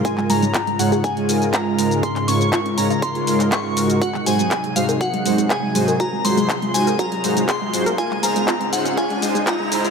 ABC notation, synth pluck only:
X:1
M:4/4
L:1/16
Q:1/4=121
K:Db
V:1 name="Synth pluck" clef=bass
F A, A, A, F A, A, A8 z | A D D D F D D F8 z | G A, A, A, A A, A, B G A, A, A, A A, A, B | G A, A, A, A A, A, B G A, A, A, A A, A, B |
F A, A, A, F A, A, A, F A, A, A, F A, A, A, |]